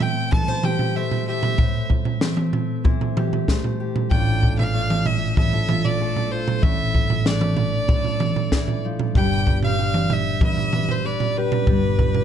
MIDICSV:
0, 0, Header, 1, 5, 480
1, 0, Start_track
1, 0, Tempo, 630252
1, 1214, Time_signature, 4, 2, 24, 8
1, 9324, End_track
2, 0, Start_track
2, 0, Title_t, "Fiddle"
2, 0, Program_c, 0, 110
2, 15, Note_on_c, 0, 79, 77
2, 242, Note_off_c, 0, 79, 0
2, 247, Note_on_c, 0, 81, 90
2, 493, Note_on_c, 0, 79, 80
2, 505, Note_off_c, 0, 81, 0
2, 731, Note_on_c, 0, 76, 73
2, 742, Note_off_c, 0, 79, 0
2, 965, Note_off_c, 0, 76, 0
2, 969, Note_on_c, 0, 76, 69
2, 1422, Note_off_c, 0, 76, 0
2, 3127, Note_on_c, 0, 79, 81
2, 3466, Note_off_c, 0, 79, 0
2, 3493, Note_on_c, 0, 77, 85
2, 3853, Note_on_c, 0, 76, 83
2, 3864, Note_off_c, 0, 77, 0
2, 4088, Note_off_c, 0, 76, 0
2, 4092, Note_on_c, 0, 76, 84
2, 4452, Note_on_c, 0, 74, 77
2, 4463, Note_off_c, 0, 76, 0
2, 4810, Note_on_c, 0, 72, 70
2, 4822, Note_off_c, 0, 74, 0
2, 5045, Note_on_c, 0, 76, 80
2, 5057, Note_off_c, 0, 72, 0
2, 5539, Note_on_c, 0, 74, 72
2, 5551, Note_off_c, 0, 76, 0
2, 6737, Note_off_c, 0, 74, 0
2, 6976, Note_on_c, 0, 79, 88
2, 7310, Note_off_c, 0, 79, 0
2, 7340, Note_on_c, 0, 77, 84
2, 7710, Note_on_c, 0, 76, 79
2, 7722, Note_off_c, 0, 77, 0
2, 7942, Note_off_c, 0, 76, 0
2, 7950, Note_on_c, 0, 76, 80
2, 8311, Note_on_c, 0, 72, 76
2, 8322, Note_off_c, 0, 76, 0
2, 8417, Note_on_c, 0, 74, 71
2, 8429, Note_off_c, 0, 72, 0
2, 8662, Note_on_c, 0, 71, 79
2, 8674, Note_off_c, 0, 74, 0
2, 9324, Note_off_c, 0, 71, 0
2, 9324, End_track
3, 0, Start_track
3, 0, Title_t, "Steel-string acoustic guitar"
3, 0, Program_c, 1, 25
3, 0, Note_on_c, 1, 45, 59
3, 0, Note_on_c, 1, 57, 48
3, 0, Note_on_c, 1, 60, 44
3, 250, Note_on_c, 1, 52, 46
3, 256, Note_on_c, 1, 69, 57
3, 367, Note_off_c, 1, 69, 0
3, 367, Note_on_c, 1, 72, 49
3, 495, Note_on_c, 1, 67, 51
3, 725, Note_off_c, 1, 57, 0
3, 727, Note_off_c, 1, 72, 0
3, 728, Note_on_c, 1, 57, 52
3, 736, Note_on_c, 1, 72, 56
3, 968, Note_off_c, 1, 67, 0
3, 978, Note_on_c, 1, 67, 45
3, 1184, Note_off_c, 1, 52, 0
3, 1187, Note_off_c, 1, 67, 0
3, 1203, Note_off_c, 1, 45, 0
3, 1206, Note_on_c, 1, 45, 55
3, 1683, Note_off_c, 1, 57, 0
3, 1686, Note_on_c, 1, 57, 47
3, 1687, Note_off_c, 1, 60, 0
3, 1690, Note_on_c, 1, 60, 47
3, 2164, Note_on_c, 1, 52, 52
3, 2169, Note_off_c, 1, 72, 0
3, 2172, Note_on_c, 1, 72, 54
3, 2421, Note_on_c, 1, 67, 48
3, 2653, Note_off_c, 1, 57, 0
3, 2656, Note_on_c, 1, 57, 50
3, 2657, Note_off_c, 1, 72, 0
3, 2660, Note_on_c, 1, 72, 51
3, 2886, Note_off_c, 1, 67, 0
3, 2895, Note_on_c, 1, 67, 47
3, 3102, Note_off_c, 1, 52, 0
3, 3107, Note_off_c, 1, 67, 0
3, 3132, Note_off_c, 1, 45, 0
3, 3135, Note_off_c, 1, 57, 0
3, 3136, Note_on_c, 1, 45, 59
3, 3138, Note_off_c, 1, 60, 0
3, 3138, Note_on_c, 1, 57, 49
3, 3142, Note_on_c, 1, 62, 47
3, 3146, Note_on_c, 1, 65, 50
3, 3152, Note_off_c, 1, 72, 0
3, 3155, Note_on_c, 1, 69, 55
3, 3604, Note_off_c, 1, 57, 0
3, 3607, Note_on_c, 1, 57, 46
3, 3610, Note_off_c, 1, 62, 0
3, 3613, Note_on_c, 1, 62, 45
3, 4093, Note_off_c, 1, 45, 0
3, 4096, Note_on_c, 1, 45, 54
3, 4098, Note_off_c, 1, 69, 0
3, 4101, Note_on_c, 1, 69, 47
3, 4334, Note_off_c, 1, 65, 0
3, 4343, Note_on_c, 1, 65, 49
3, 4566, Note_off_c, 1, 57, 0
3, 4569, Note_off_c, 1, 69, 0
3, 4575, Note_on_c, 1, 57, 56
3, 4580, Note_on_c, 1, 69, 51
3, 4812, Note_off_c, 1, 65, 0
3, 4821, Note_on_c, 1, 65, 46
3, 5027, Note_off_c, 1, 57, 0
3, 5030, Note_off_c, 1, 65, 0
3, 5050, Note_off_c, 1, 45, 0
3, 5059, Note_on_c, 1, 45, 59
3, 5533, Note_on_c, 1, 57, 47
3, 5537, Note_off_c, 1, 62, 0
3, 5540, Note_on_c, 1, 62, 43
3, 6006, Note_off_c, 1, 45, 0
3, 6011, Note_off_c, 1, 69, 0
3, 6015, Note_on_c, 1, 45, 46
3, 6020, Note_on_c, 1, 69, 59
3, 6493, Note_on_c, 1, 52, 55
3, 6734, Note_off_c, 1, 52, 0
3, 6739, Note_on_c, 1, 53, 52
3, 6945, Note_off_c, 1, 57, 0
3, 6974, Note_on_c, 1, 55, 59
3, 6975, Note_off_c, 1, 45, 0
3, 6977, Note_off_c, 1, 53, 0
3, 6977, Note_off_c, 1, 69, 0
3, 6981, Note_off_c, 1, 62, 0
3, 6984, Note_on_c, 1, 62, 50
3, 6987, Note_on_c, 1, 67, 55
3, 6992, Note_on_c, 1, 71, 59
3, 7450, Note_off_c, 1, 62, 0
3, 7453, Note_on_c, 1, 62, 46
3, 7454, Note_off_c, 1, 67, 0
3, 7457, Note_on_c, 1, 67, 45
3, 7936, Note_on_c, 1, 50, 51
3, 7937, Note_off_c, 1, 71, 0
3, 7940, Note_on_c, 1, 71, 58
3, 8178, Note_off_c, 1, 71, 0
3, 8181, Note_on_c, 1, 71, 54
3, 8409, Note_off_c, 1, 62, 0
3, 8412, Note_on_c, 1, 62, 53
3, 8415, Note_off_c, 1, 71, 0
3, 8418, Note_on_c, 1, 71, 55
3, 8663, Note_off_c, 1, 67, 0
3, 8666, Note_on_c, 1, 67, 49
3, 8894, Note_off_c, 1, 50, 0
3, 8895, Note_off_c, 1, 55, 0
3, 8898, Note_on_c, 1, 55, 57
3, 9324, Note_off_c, 1, 55, 0
3, 9324, Note_off_c, 1, 62, 0
3, 9324, Note_off_c, 1, 67, 0
3, 9324, Note_off_c, 1, 71, 0
3, 9324, End_track
4, 0, Start_track
4, 0, Title_t, "Picked electric bass"
4, 0, Program_c, 2, 34
4, 3130, Note_on_c, 2, 33, 60
4, 5023, Note_off_c, 2, 33, 0
4, 5050, Note_on_c, 2, 33, 63
4, 6942, Note_off_c, 2, 33, 0
4, 6971, Note_on_c, 2, 31, 59
4, 8860, Note_off_c, 2, 31, 0
4, 8887, Note_on_c, 2, 31, 60
4, 9324, Note_off_c, 2, 31, 0
4, 9324, End_track
5, 0, Start_track
5, 0, Title_t, "Drums"
5, 4, Note_on_c, 9, 43, 72
5, 80, Note_off_c, 9, 43, 0
5, 245, Note_on_c, 9, 43, 69
5, 245, Note_on_c, 9, 47, 64
5, 248, Note_on_c, 9, 36, 85
5, 321, Note_off_c, 9, 43, 0
5, 321, Note_off_c, 9, 47, 0
5, 325, Note_off_c, 9, 36, 0
5, 366, Note_on_c, 9, 43, 60
5, 442, Note_off_c, 9, 43, 0
5, 483, Note_on_c, 9, 43, 68
5, 483, Note_on_c, 9, 47, 71
5, 559, Note_off_c, 9, 43, 0
5, 559, Note_off_c, 9, 47, 0
5, 603, Note_on_c, 9, 43, 72
5, 679, Note_off_c, 9, 43, 0
5, 849, Note_on_c, 9, 43, 64
5, 925, Note_off_c, 9, 43, 0
5, 1087, Note_on_c, 9, 43, 70
5, 1164, Note_off_c, 9, 43, 0
5, 1204, Note_on_c, 9, 43, 69
5, 1208, Note_on_c, 9, 36, 85
5, 1280, Note_off_c, 9, 43, 0
5, 1284, Note_off_c, 9, 36, 0
5, 1445, Note_on_c, 9, 43, 56
5, 1448, Note_on_c, 9, 36, 56
5, 1521, Note_off_c, 9, 43, 0
5, 1525, Note_off_c, 9, 36, 0
5, 1564, Note_on_c, 9, 43, 58
5, 1640, Note_off_c, 9, 43, 0
5, 1685, Note_on_c, 9, 38, 66
5, 1685, Note_on_c, 9, 47, 57
5, 1761, Note_off_c, 9, 38, 0
5, 1761, Note_off_c, 9, 47, 0
5, 1804, Note_on_c, 9, 47, 66
5, 1880, Note_off_c, 9, 47, 0
5, 1927, Note_on_c, 9, 43, 69
5, 2003, Note_off_c, 9, 43, 0
5, 2169, Note_on_c, 9, 43, 62
5, 2171, Note_on_c, 9, 36, 81
5, 2245, Note_off_c, 9, 43, 0
5, 2247, Note_off_c, 9, 36, 0
5, 2294, Note_on_c, 9, 43, 57
5, 2370, Note_off_c, 9, 43, 0
5, 2414, Note_on_c, 9, 43, 67
5, 2414, Note_on_c, 9, 47, 64
5, 2490, Note_off_c, 9, 43, 0
5, 2490, Note_off_c, 9, 47, 0
5, 2536, Note_on_c, 9, 43, 62
5, 2612, Note_off_c, 9, 43, 0
5, 2652, Note_on_c, 9, 36, 57
5, 2653, Note_on_c, 9, 38, 53
5, 2728, Note_off_c, 9, 36, 0
5, 2729, Note_off_c, 9, 38, 0
5, 2775, Note_on_c, 9, 43, 58
5, 2851, Note_off_c, 9, 43, 0
5, 3013, Note_on_c, 9, 43, 70
5, 3090, Note_off_c, 9, 43, 0
5, 3131, Note_on_c, 9, 43, 67
5, 3132, Note_on_c, 9, 36, 86
5, 3208, Note_off_c, 9, 43, 0
5, 3209, Note_off_c, 9, 36, 0
5, 3373, Note_on_c, 9, 36, 53
5, 3376, Note_on_c, 9, 43, 60
5, 3449, Note_off_c, 9, 36, 0
5, 3452, Note_off_c, 9, 43, 0
5, 3496, Note_on_c, 9, 43, 71
5, 3573, Note_off_c, 9, 43, 0
5, 3735, Note_on_c, 9, 47, 62
5, 3811, Note_off_c, 9, 47, 0
5, 3851, Note_on_c, 9, 43, 74
5, 3927, Note_off_c, 9, 43, 0
5, 4091, Note_on_c, 9, 36, 81
5, 4091, Note_on_c, 9, 43, 66
5, 4091, Note_on_c, 9, 47, 64
5, 4167, Note_off_c, 9, 36, 0
5, 4167, Note_off_c, 9, 43, 0
5, 4167, Note_off_c, 9, 47, 0
5, 4212, Note_on_c, 9, 43, 53
5, 4289, Note_off_c, 9, 43, 0
5, 4330, Note_on_c, 9, 43, 67
5, 4330, Note_on_c, 9, 47, 65
5, 4406, Note_off_c, 9, 43, 0
5, 4406, Note_off_c, 9, 47, 0
5, 4455, Note_on_c, 9, 43, 67
5, 4531, Note_off_c, 9, 43, 0
5, 4695, Note_on_c, 9, 43, 59
5, 4771, Note_off_c, 9, 43, 0
5, 4932, Note_on_c, 9, 43, 67
5, 5009, Note_off_c, 9, 43, 0
5, 5049, Note_on_c, 9, 43, 69
5, 5050, Note_on_c, 9, 36, 90
5, 5125, Note_off_c, 9, 43, 0
5, 5126, Note_off_c, 9, 36, 0
5, 5290, Note_on_c, 9, 36, 56
5, 5290, Note_on_c, 9, 43, 56
5, 5366, Note_off_c, 9, 36, 0
5, 5366, Note_off_c, 9, 43, 0
5, 5408, Note_on_c, 9, 43, 63
5, 5484, Note_off_c, 9, 43, 0
5, 5528, Note_on_c, 9, 38, 65
5, 5528, Note_on_c, 9, 47, 59
5, 5605, Note_off_c, 9, 38, 0
5, 5605, Note_off_c, 9, 47, 0
5, 5644, Note_on_c, 9, 47, 65
5, 5720, Note_off_c, 9, 47, 0
5, 5762, Note_on_c, 9, 43, 76
5, 5838, Note_off_c, 9, 43, 0
5, 6005, Note_on_c, 9, 43, 68
5, 6008, Note_on_c, 9, 36, 92
5, 6081, Note_off_c, 9, 43, 0
5, 6084, Note_off_c, 9, 36, 0
5, 6128, Note_on_c, 9, 43, 58
5, 6204, Note_off_c, 9, 43, 0
5, 6246, Note_on_c, 9, 43, 67
5, 6246, Note_on_c, 9, 47, 64
5, 6322, Note_off_c, 9, 43, 0
5, 6322, Note_off_c, 9, 47, 0
5, 6369, Note_on_c, 9, 43, 69
5, 6445, Note_off_c, 9, 43, 0
5, 6489, Note_on_c, 9, 36, 53
5, 6489, Note_on_c, 9, 38, 59
5, 6565, Note_off_c, 9, 36, 0
5, 6565, Note_off_c, 9, 38, 0
5, 6609, Note_on_c, 9, 43, 62
5, 6685, Note_off_c, 9, 43, 0
5, 6850, Note_on_c, 9, 43, 73
5, 6927, Note_off_c, 9, 43, 0
5, 6971, Note_on_c, 9, 36, 90
5, 6974, Note_on_c, 9, 43, 70
5, 7047, Note_off_c, 9, 36, 0
5, 7050, Note_off_c, 9, 43, 0
5, 7211, Note_on_c, 9, 36, 57
5, 7213, Note_on_c, 9, 43, 60
5, 7287, Note_off_c, 9, 36, 0
5, 7289, Note_off_c, 9, 43, 0
5, 7331, Note_on_c, 9, 43, 65
5, 7407, Note_off_c, 9, 43, 0
5, 7572, Note_on_c, 9, 47, 63
5, 7648, Note_off_c, 9, 47, 0
5, 7692, Note_on_c, 9, 43, 72
5, 7768, Note_off_c, 9, 43, 0
5, 7929, Note_on_c, 9, 36, 90
5, 7932, Note_on_c, 9, 43, 69
5, 7932, Note_on_c, 9, 47, 62
5, 8005, Note_off_c, 9, 36, 0
5, 8008, Note_off_c, 9, 43, 0
5, 8008, Note_off_c, 9, 47, 0
5, 8049, Note_on_c, 9, 43, 56
5, 8125, Note_off_c, 9, 43, 0
5, 8169, Note_on_c, 9, 43, 70
5, 8169, Note_on_c, 9, 47, 61
5, 8245, Note_off_c, 9, 43, 0
5, 8245, Note_off_c, 9, 47, 0
5, 8291, Note_on_c, 9, 43, 68
5, 8367, Note_off_c, 9, 43, 0
5, 8531, Note_on_c, 9, 43, 65
5, 8608, Note_off_c, 9, 43, 0
5, 8773, Note_on_c, 9, 43, 76
5, 8849, Note_off_c, 9, 43, 0
5, 8889, Note_on_c, 9, 36, 90
5, 8890, Note_on_c, 9, 43, 65
5, 8965, Note_off_c, 9, 36, 0
5, 8967, Note_off_c, 9, 43, 0
5, 9130, Note_on_c, 9, 36, 55
5, 9133, Note_on_c, 9, 43, 67
5, 9206, Note_off_c, 9, 36, 0
5, 9209, Note_off_c, 9, 43, 0
5, 9250, Note_on_c, 9, 43, 66
5, 9324, Note_off_c, 9, 43, 0
5, 9324, End_track
0, 0, End_of_file